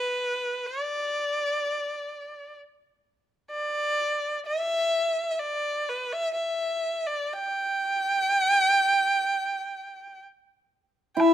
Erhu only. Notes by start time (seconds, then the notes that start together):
Already playing: B4
0.66 D5
3.51 D5
4.46 E5
5.30 E5
5.39 D5
5.89 B4
6.12 E5
6.34 E5
7.07 D5
7.34 G5
11.15 G5
11.20 E5